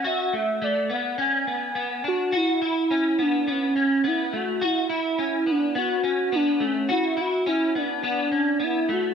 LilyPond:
<<
  \new Staff \with { instrumentName = "Soft synth lead" } { \time 4/4 \key a \major \tempo 4 = 105 e''4 d''8 fis''8 gis''4. fis'8 | e'4. d'8 cis'4 e'8 fis'8 | e'4. d'8 fis'4 d'8 cis'8 | e'8 fis'8 e'8 d'4. e'8 fis'8 | }
  \new Staff \with { instrumentName = "Clean electric guitar" } { \time 4/4 \key a \major fis'8 a8 a8 b8 cis'8 b8 b8 d'8 | fis'8 e'8 cis'8 b8 b8 cis'8 b8 a8 | fis'8 e'8 cis'8 b8 b8 cis'8 b8 a8 | fis'8 e'8 cis'8 b8 b8 cis'8 b8 a8 | }
>>